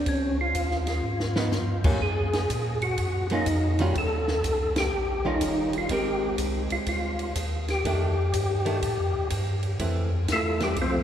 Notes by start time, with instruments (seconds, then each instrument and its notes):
0.06 tonewheel organ C#2 C#4, kick, ride
0.41 tonewheel organ F4
0.55 tonewheel organ D#2, kick, hi-hat pedal, ride
0.71 snare
0.87 tonewheel organ F4, snare, ride
1.03 tonewheel organ G#2
1.20 snare
1.36 hollow-body jazz guitar F3 B3 D#4, snare
1.51 tonewheel organ G2, snare, hi-hat pedal
1.84 hollow-body jazz guitar F#3 A#3 C#4 F4, tonewheel organ G4, kick, crash
2.01 tonewheel organ F#2 G#4, kick
2.33 snare, ride
2.50 tonewheel organ A#2, kick, hi-hat pedal, ride
2.82 tonewheel organ F#4, ride
2.98 tonewheel organ F#2, kick, ride
3.30 hollow-body jazz guitar F#3 A#3 C#4 F4, ride
3.34 tonewheel organ D#4
3.46 tonewheel organ F2, kick, hi-hat pedal, ride
3.79 hollow-body jazz guitar D#3 G3 C#4 F4, tonewheel organ F#4, ride
3.95 tonewheel organ D#2 A4, kick, ride
4.28 snare
4.44 tonewheel organ C#2, kick, hi-hat pedal, ride
4.76 tonewheel organ G4, snare, ride
4.93 tonewheel organ A#1
5.25 hollow-body jazz guitar D#3 G3 C#4 F4, tonewheel organ D#4
5.41 tonewheel organ F1, kick, hi-hat pedal, ride
5.73 ride
5.78 tonewheel organ F4
5.89 tonewheel organ G#1, hollow-body jazz guitar G#3 C4 G4 A#4, kick, ride
5.93 tonewheel organ G4
6.38 tonewheel organ C2, kick, hi-hat pedal, ride
6.70 tonewheel organ C2 F4, ride
6.86 tonewheel organ D2 F4, kick, ride
7.19 ride
7.35 tonewheel organ D#2, kick, hi-hat pedal, ride
7.68 tonewheel organ G4, snare, ride
7.85 tonewheel organ F2, hollow-body jazz guitar D#3 A3 D4, kick, ride
8.33 tonewheel organ G2, kick, hi-hat pedal, ride
8.66 hollow-body jazz guitar D#3 A3 D4, ride
8.82 tonewheel organ A2, kick, ride
8.99 tonewheel organ F2
9.15 tonewheel organ D#2
9.30 tonewheel organ G2, kick, hi-hat pedal, ride
9.63 ride
9.79 tonewheel organ F2, hollow-body jazz guitar E3 A3 C4, kick, ride
10.28 tonewheel organ E2, kick, snare, hi-hat pedal, ride
10.32 tonewheel organ A3 E4 F4 A4
10.60 hollow-body jazz guitar E3 A3 C4, tonewheel organ G3 G4, snare, ride
10.76 tonewheel organ C2, kick, ride
10.81 tonewheel organ F3 A3 C4 F4